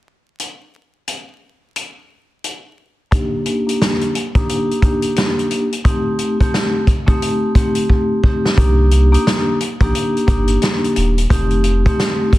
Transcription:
0.40 closed hi-hat
1.08 closed hi-hat
1.76 closed hi-hat
2.44 closed hi-hat
3.11 A#3 D4 D#4 G4, kick, closed hi-hat
3.46 closed hi-hat
3.67 A#3 D4 D#4 G4, closed hi-hat
3.82 snare, closed hi-hat
4.01 closed hi-hat
4.15 closed hi-hat
4.35 A#3 D4 D#4 G4, kick, closed hi-hat
4.49 closed hi-hat
4.71 closed hi-hat
4.82 A#3 D4 D#4 G4, kick, closed hi-hat
5.02 closed hi-hat
5.16 snare, closed hi-hat
5.39 closed hi-hat
5.51 closed hi-hat
5.72 closed hi-hat
5.84 A3 C4 D#4 G4, kick, closed hi-hat
6.19 closed hi-hat
6.41 A3 C4 D#4 G4, kick, closed hi-hat
6.54 snare, closed hi-hat
6.87 kick, closed hi-hat
7.06 A3 C4 D#4 G4, kick, closed hi-hat
7.22 closed hi-hat
7.55 A3 C4 D#4 G4, kick, closed hi-hat
7.75 closed hi-hat
7.89 kick
8.24 A3 C4 D#4 G4, kick
8.46 snare
8.57 C2 A#3 D4 D#4 G4, kick, closed hi-hat
8.91 closed hi-hat
9.12 A#3 D4 D#4 G4, closed hi-hat
9.27 snare, closed hi-hat
9.60 closed hi-hat
9.81 A#1 A#3 D4 D#4 G4, kick, closed hi-hat
9.95 closed hi-hat
10.17 closed hi-hat
10.27 G1 A#3 D4 D#4 G4, kick, closed hi-hat
10.48 closed hi-hat
10.62 snare, closed hi-hat
10.84 closed hi-hat
10.96 D#1, closed hi-hat
11.18 closed hi-hat
11.30 F1 A3 C4 D#4 G4, kick, closed hi-hat
11.50 closed hi-hat
11.64 closed hi-hat
11.86 A3 C4 D#4 G4, kick, closed hi-hat
12.00 snare, closed hi-hat
12.33 kick, closed hi-hat

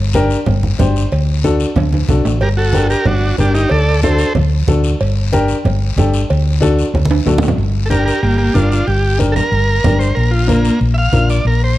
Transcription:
Already playing: G1
0.13 D4 G4 A#4, high conga, short guiro
0.30 short guiro
0.46 G1, cowbell, low conga, long guiro
0.63 high conga
0.79 G1 D4 G4 C5, high conga, low conga, low timbale, short guiro
0.96 short guiro
1.12 D2, cowbell, long guiro
1.44 D4 F#4 A4, high conga, short guiro
1.60 short guiro
1.76 D2, cowbell, low conga, high timbale, long guiro
1.93 high conga, high timbale
2.09 C2 D4 F#4 A4, high conga, low conga, short guiro
2.25 A1, low timbale, short guiro
2.41 G1 G4 A#4, cowbell, long guiro
2.57 F#4 A4
2.73 D4 G4 A#4, high conga, short guiro
2.90 G4 A#4, short guiro
3.06 G1 D4 F#4, cowbell, low conga, long guiro
3.38 G1 D4 G4 A#4, high conga, short guiro
3.54 D#4 G4, short guiro
3.70 D2 A4 D5, cowbell, long guiro
4.03 D4 F#4 A4 C5, high conga, short guiro
4.18 short guiro
4.35 D2, cowbell, low conga, long guiro
4.67 D2 D4 F#4 A4, high conga, low conga, short guiro
4.84 short guiro
5.00 G1, cowbell, long guiro
5.32 D4 G4 A#4, high conga, short guiro
5.48 short guiro
5.64 G1, cowbell, low conga, long guiro
5.96 G1 D4 G4 A4, high conga, low conga, short guiro
6.14 short guiro
6.30 D2, cowbell, long guiro
6.60 D4 F#4 A4, high conga, short guiro
6.79 short guiro
6.94 D2, cowbell, high conga, long guiro
7.05 high conga
7.11 high timbale
7.26 D2 D4 F#4 A4, low conga, low timbale, short guiro
7.38 low conga, short guiro
7.43 low timbale
7.48 low conga
7.57 G1, high conga, long guiro
7.86 D4 A4
7.90 G4 A#4, high conga, short guiro
8.05 G4 A#4, short guiro
8.23 G1 A#3 G4, high conga, long guiro
8.37 A#3 G4
8.54 G1 D4 F4 G4 A#4, high conga, short guiro
8.71 D4 F4, short guiro
8.87 G1 G4, high conga, long guiro
9.18 D4 G4 A#4, high conga, short guiro
9.32 A4
9.36 A#4, low conga, short guiro
9.52 G1, high conga, long guiro
9.84 G1 D4 G4 A#4, high conga, low conga, short guiro
9.99 C5, short guiro
10.15 A#1 A#4, high conga, long guiro
10.31 F4
10.47 A#3 D4 F4 A#4, high conga, short guiro
10.65 short guiro
10.81 A#1, high conga, long guiro
10.94 E5
10.98 F5
11.12 A#1 D4 F4 A#4, high conga, short guiro
11.30 D5, short guiro
11.45 A#1 A#4, high conga, long guiro
11.64 C5

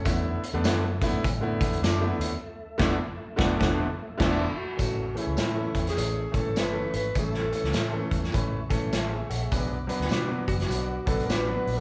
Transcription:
Already playing: C#4 A4
0.05 E2 D3 A3 B3 E4 A4 E5, kick, closed hi-hat, tambourine
0.43 closed hi-hat
0.53 E2 D3 A3 B3 D4
0.64 F#2 D4 E4 A4, snare, closed hi-hat, tambourine
1.01 D3 A3 B3 E4, kick, closed hi-hat
1.12 G#2
1.24 A2, kick, closed hi-hat, tambourine
1.41 D3 A3 B3 E4
1.61 E2, kick, closed hi-hat
1.73 closed hi-hat
1.82 F#2 D4 E4 A4, snare, closed hi-hat, tambourine
2.00 D3 A3 B3 E4
2.19 D#2, closed hi-hat
2.78 E1 D3 A3 B3 D4 E4 A4, kick, snare, crash
3.36 E1 D3 A3 B3 D4 E4, kick, snare
3.40 A4
3.58 E1 D3 A3 B3 D4 E4, kick, snare
3.62 A4
4.18 E1 D3 A3 B3 D4 E4 A4, kick, snare, crash
4.57 F#4
4.77 A1 E3 A3 C#4 A4 E5 C#6, kick, closed hi-hat, tambourine
4.81 F#4
5.14 E3 A3 C#4 E4 G#4, closed hi-hat
5.27 C#2
5.37 A2 C#4 E4 A4, snare, closed hi-hat, tambourine
5.55 E3 A3 C#4 A4
5.74 E2, kick, closed hi-hat
5.87 G#4, snare, closed hi-hat
5.96 A1 E3 A3 C#4 A4, closed hi-hat, tambourine
6.32 A1 E3 A3 C#4 A4, kick, closed hi-hat
6.56 G1 C#4 E4 A4 B4, snare, closed hi-hat, tambourine
6.72 E3 A3 C#4 A4
6.93 G#1 B4, closed hi-hat
7.15 A1 E3 A3 C#4 E4 A4, kick, closed hi-hat, tambourine
7.34 snare
7.52 E3 A3 C#4 A4, closed hi-hat
7.64 C#2, snare
7.73 A2 C#4 E4 A4, snare, closed hi-hat, tambourine
7.90 E3 A3 C#4 A4
8.11 E2, kick, closed hi-hat
8.24 snare
8.32 A1 E3 A3 C#4 B4, kick, closed hi-hat, tambourine
8.69 A1 E3 A3 C#4 A4, kick, closed hi-hat
8.92 A1 C#4 E4 A4, snare, closed hi-hat, tambourine
9.10 G#4 E5
9.29 A#1 A4 F#5, closed hi-hat
9.40 G#4 E5
9.51 B1 F#3 B3 D4 B4 F#5 D6, kick, closed hi-hat, tambourine
9.87 F#3 B3 D4 B4, closed hi-hat
10.00 D2, snare
10.09 B2 D4 F#4 B4, snare, closed hi-hat, tambourine
10.28 F#3 B3 D4 B4
10.47 F#1 F#4, kick, closed hi-hat
10.60 F#4, snare, closed hi-hat
10.69 B1 F#3 B3 D4 B4, closed hi-hat, tambourine
11.06 B1 F#3 B3 D4 A4 B4, kick, closed hi-hat
11.20 closed hi-hat
11.25 A1 D4 A#4
11.30 F#4 B4, snare, closed hi-hat, tambourine
11.47 F#3 B3 D4 B4
11.67 A#1, open hi-hat

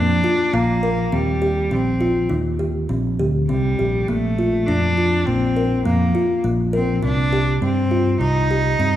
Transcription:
Already playing: F2 A#3 D4
0.24 F4
0.53 A#1 A#3
0.83 A#4
1.12 D#2 G3 C4
1.42 G4
1.71 A#1 C4
2.01 F4
2.30 D#2 D#4
2.59 G4
2.89 A#1 C4
3.19 D2 G4
3.49 C2 G3 C4
3.79 A#1 G4
4.08 A#1 A3 A#3
4.39 F4
4.67 F2 D4
4.98 F4
5.26 A#1 A#3 C4
5.56 A#4
5.85 F2 A#3
6.15 F4
6.44 A#1 A#3
6.73 C4 A#4
7.03 C2 C4 D4
7.33 G4
7.62 G2 C4
7.91 F4
8.20 C2 D#4
8.51 G4
8.79 G2 C4

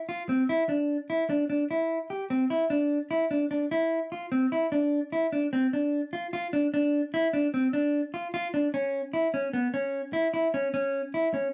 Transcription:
0.09 F4
0.29 C4
0.49 E4
0.69 D4
1.10 E4
1.30 D4
1.50 D4
1.71 E4
2.10 G4
2.30 C4
2.50 E4
2.70 D4
3.11 E4
3.31 D4
3.51 D4
3.71 E4
4.12 F4
4.32 C4
4.52 E4
4.72 D4
5.12 E4
5.32 D4
5.53 C4
5.73 D4
6.13 F4
6.33 F4
6.53 D4
6.74 D4
7.14 E4
7.33 D4
7.54 C4
7.73 D4
8.14 F4
8.34 F4
8.54 D4
8.74 C#4
9.13 E4
9.34 C#4
9.53 B3
9.74 C#4
10.13 E4
10.34 E4
10.54 C#4
10.74 C#4
11.14 E4
11.34 C#4

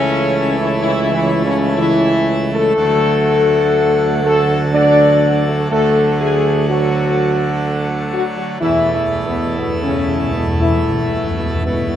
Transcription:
Already playing: C#2 C#3 E3 A3 C#4 E4 A4 C#5
0.55 E3 E4
0.80 E3 E4
1.12 E3 E4
1.45 C#3 C#4
1.76 E3 E4
2.52 A3 A4
2.76 D2 D3 F#3 F#4 A4 F#5
4.24 A3 A4
4.73 D4 A4 D5 F#5
5.47 A3 A4
5.71 D2 D3 F#3 A3 F#4 A4 F#5
6.20 A3 G#4
6.68 F#3 F#4 A4 F#5
8.12 F#3 F#4
8.37 F#3 F#4
8.60 E2 B2 E3 A3 E4 A4 E5
8.69 E2
8.77 E2
8.84 E2
8.92 E2 E3 E4
9.00 E2
9.08 E2
9.15 E2
9.22 E2
9.26 E2 B2 B3
9.37 E2
9.45 E2
9.53 E2
9.57 E2 B2 B3 A4 E5
9.68 E2
9.75 E2
9.83 E2 C#3 C#4
9.91 E2
9.98 E2
10.07 E2
10.16 E2
10.23 E2
10.31 E2 B3
10.36 E2 B2
10.47 E2
10.54 E2
10.60 E2 E3 E4 A4 E5
10.69 E2
10.76 E2
10.85 E2
10.91 E2
10.99 E2
11.08 E2
11.14 E2
11.23 E2
11.30 E2
11.38 E2 B2 B3
11.46 E2
11.55 E2
11.62 E2 B3 A4 E5
11.66 E2 B2 A3 E4
11.70 E2
11.78 E2
11.87 E2

